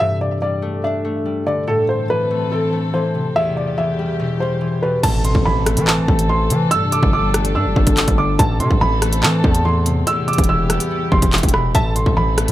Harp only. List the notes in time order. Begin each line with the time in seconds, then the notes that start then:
Already playing: A3 C4
0.00 G2
0.42 G3
0.62 A3
0.84 D4
1.05 A3
1.26 G3
1.46 D3
1.67 A2
2.10 E3
2.31 A3
2.52 C4
2.73 A3
2.94 E3
3.15 C3
3.36 E2
3.78 E3
3.99 G3
4.20 B2
4.40 G3
4.61 E3
4.83 B2
5.03 A2
5.46 E3
5.66 A3
5.87 C4
6.08 A3
6.29 E3
6.51 C3
6.72 G2
7.13 G3
7.34 A3
7.56 D4
7.76 A3
7.97 G3
8.18 D3
8.39 A2
8.81 E3
9.02 A3
9.24 C4
9.44 A3
9.65 E3
9.86 C3
10.07 E2
10.49 E3
10.70 G3
10.91 B3
11.12 G3
11.32 E3
11.54 B2
11.74 A2
12.17 E3
12.38 A3